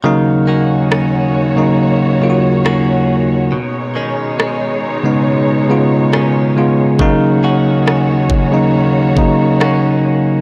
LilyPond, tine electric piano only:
\new Staff \with { instrumentName = "Tine electric piano" } { \time 4/4 \key ees \minor \tempo 4 = 69 <des ges bes ees'>4. r16 <des ges bes ees'>8 r16 <des ges bes f' ges'>4. | r4. r16 <cis gis b dis'>8 r16 <cis gis b f'>8. r16 <cis gis b f'>8 | <des ges bes ees'>4. r16 <des ges bes ees'>8 r16 <des ges bes ees'>4. | }